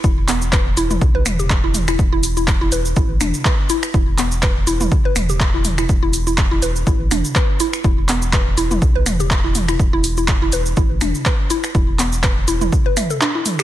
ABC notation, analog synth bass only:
X:1
M:4/4
L:1/8
Q:"Swing 16ths" 1/4=123
K:Em
V:1 name="Analog synth bass" clef=bass
E,,,3 E,,, B,,, E,,,3 | E,,,3 E,,, A,,, E,,, z2 | E,,,3 E,,, z E,,,3 | E,,,3 E,,, A,,, E,,, z2 |
E,,,3 E,,, B,,, E,,,3 | E,,,3 E,,, A,,, E,,, z2 | E,,,3 E,,, z4 |]